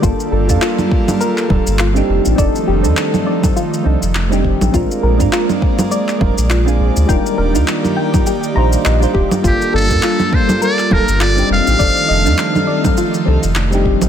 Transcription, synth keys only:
X:1
M:4/4
L:1/16
Q:"Swing 16ths" 1/4=102
K:Gm
V:1 name="Synth keys"
[G,B,DFA]3 [G,B,DFA]4 [G,B,DFA] z2 [G,B,DFA] z2 [G,CDEG]3 | [G,CDEA]3 [G,CDEA]4 [G,CDEA] z2 [G,CDEA] z2 [G,CDEG]3 | [_A,CDFB]3 [A,CDFB]4 [A,CDFB] z2 [A,CDFB] z2 [A,CDF_A]3 | [G,DEFB]3 [G,DEFB]4 [G,DEFB] z2 [G,DEFc]3 [G,DEFc]3 |
[G,B,DFA]3 [G,B,DFA]4 [G,B,DFA] z2 [G,B,DFA] z2 [G,CDEG]3 | [G,CDEA]3 [G,CDEA]4 [G,CDEA] z2 [G,CDEA] z2 [G,CDEG]3 |]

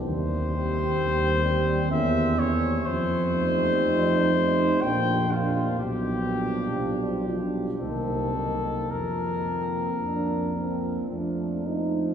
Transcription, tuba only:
X:1
M:3/4
L:1/8
Q:1/4=61
K:Fmix
V:1 name="Tuba" clef=bass
E,,2 E,,2 =E,,2 | F,,2 F,,2 B,,,2 | =B,,,2 B,,,2 C,,2 | F,,2 F,,2 F,,2 |]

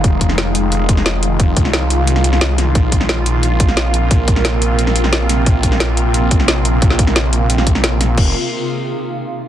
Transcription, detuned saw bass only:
X:1
M:4/4
L:1/8
Q:1/4=177
K:Fm
V:1 name="Detuned saw bass" clef=bass
F,,,8 | F,,, C,,6- C,, | B,,,8 | B,,,8 |
B,,,8 | B,,,8 | F,,, z6 z |]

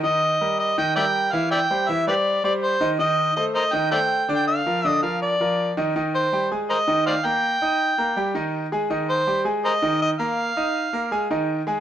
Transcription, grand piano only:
X:1
M:4/4
L:1/8
Q:1/4=162
K:Eb
V:1 name="Grand piano"
[E,Ee]2 [G,GB]2 [E,Ee] [G,GB]2 [_F,_F_f]- | [_F,_F_f] [G,Gc] [=E,=E=e] [G,Gc]2 [G,Gc]2 [_E,_E_e] | [E,Ee]2 [=A,=Ac]2 [E,Ee] [A,Ac]2 [D,Dd]- | [D,Dd] [F,FB] [D,Dd] [F,FB]2 [F,FB]2 [E,Ee] |
[E,Ee]2 [G,Gg] [A,Aa]2 [E,Ee]2 [B,Bb]- | [B,Bb] [Eee']2 [B,Bb] [G,Gg] [E,Ee]2 [A,Aa] | [E,Ee]2 [G,Gg] [A,Aa]2 [E,Ee]2 [B,Bb]- | [B,Bb] [Eee']2 [B,Bb] [A,Aa] [E,Ee]2 [A,Aa] |]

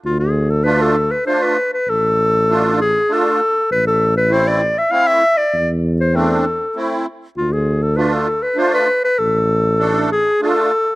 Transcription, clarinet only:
X:1
M:3/4
L:1/16
Q:1/4=98
K:none
V:1 name="Clarinet"
F ^G2 A B A2 B c B2 B | A6 ^G2 A4 | B A2 B c d2 e f e2 d- | d z2 c A6 z2 |
F ^G2 A B A2 B c B2 B | A6 ^G2 A4 |]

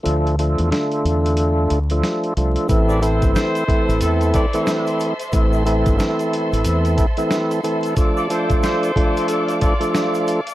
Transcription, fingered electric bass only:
X:1
M:4/4
L:1/16
Q:"Swing 16ths" 1/4=91
K:Am
V:1 name="Fingered electric bass" clef=bass
D,,3 E,, z2 E,,4 D,,2 z2 C,, z | A,,,3 G,,, z3 A,,, E,,2 z6 | A,,,3 G,,, z3 A,,, E,,2 z6 | z16 |]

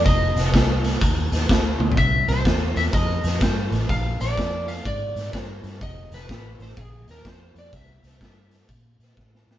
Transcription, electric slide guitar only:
X:1
M:4/4
L:1/8
Q:"Swing" 1/4=125
K:Fmix
V:1 name="Electric slide guitar"
e6 z2 | =e c2 e _e2 c z | f d2 f d2 c z | e =B2 c _A _B c d |
=e6 z2 |]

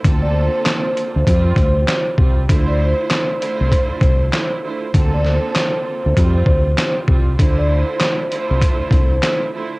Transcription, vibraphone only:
X:1
M:4/4
L:1/16
Q:"Swing 16ths" 1/4=98
K:Dm
V:1 name="Vibraphone"
z d c8 c3 z3 | z d c8 c3 z3 | z d c8 c3 z3 | z d c8 c3 z3 |]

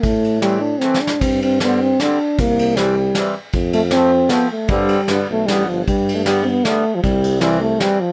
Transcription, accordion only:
X:1
M:3/4
L:1/8
Q:1/4=154
K:C
V:1 name="Accordion" clef=bass
z2 [E,A,C] z [E,A,C] z | z2 [D,G,C] z [D,G,C] z | z2 [E,G,C] z [E,G,C] z | z2 [F,A,C] z [F,A,C] z |
[D,G,C]2 [D,G,B,] z [D,G,B,] z | z2 [D,G,B,] z [D,G,B,] z | z2 [E,G,C] z [E,G,C] z |]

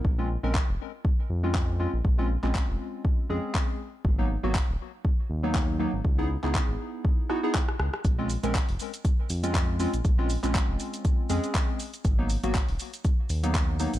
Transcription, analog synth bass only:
X:1
M:4/4
L:1/16
Q:"Swing 16ths" 1/4=120
K:Abdor
V:1 name="Analog synth bass" clef=bass
B,,,3 B,,, z F,,, z4 F,,4- F,, B,,, | B,,,3 B,,, z F,,, z4 F,, z4 z | A,,,3 A,,, z E,,, z4 E,,4- E,, A,,, | D,,3 D,, z A,,, z8 D,, z |
B,,,3 B,,, z F,,, z4 F,,4- F,, B,,, | B,,,3 B,,, z F,,, z4 F,, z4 z | A,,,3 A,,, z E,,, z4 E,,4- E,, A,,, |]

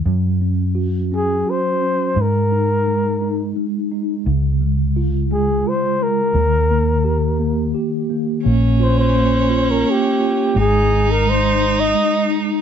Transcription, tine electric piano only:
X:1
M:3/4
L:1/8
Q:1/4=86
K:Ab
V:1 name="Tine electric piano"
_G, D _G D G D | z E A, E A, E | D, A, F A, F A, | E, B, G B, G B, |
B, F B, F B, F | A, E A, E A, E |]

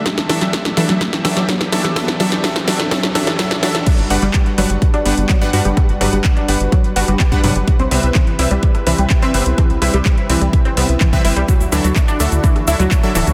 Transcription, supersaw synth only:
X:1
M:4/4
L:1/16
Q:1/4=126
K:G
V:1 name="Supersaw synth"
z2 [F,DAe] z3 [F,DAe] z3 [F,DAe] z3 [F,DAe] z | [F,DAe] z [F,DAe] z [F,DAe] z [F,DAe] z [F,DAe] z [F,DAe] z [F,DAe] z [F,DAe] z | z2 [G,,G,DBf] z3 [G,,G,DBf] z3 [G,,G,DBf] z2 [G,,G,DBf] [G,,G,DBf] z | z2 [G,,G,DBf] z3 [G,,G,DBf] z3 [G,,G,DBf] z2 [G,,G,DBf] [C,G,DBf] z |
z2 [C,G,CBe] z3 [C,G,CBe] z3 [C,G,CBe] z2 [C,G,CBe] [C,G,CBe] z | z2 [C,G,CBe] z3 [C,G,CBe] z3 [C,G,CBe] z2 [C,G,CBe] [G,CBe] z | z2 [F,DAe] z3 [F,DAe] z3 [F,DAe] z2 [F,DAe] [F,DAe] z |]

